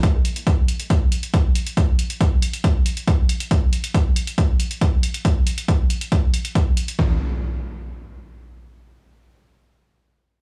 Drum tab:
HH |x-xxx-xxx-xxx-xx|x-xxx-xxx-xxx-xx|x-xxx-xxx-xxx-xx|x-xxx-xxx-xxx-xx|
BD |o---o---o---o---|o---o---o---o---|o---o---o---o---|o---o---o---o---|

HH |----------------|----------------|
BD |o---------------|----------------|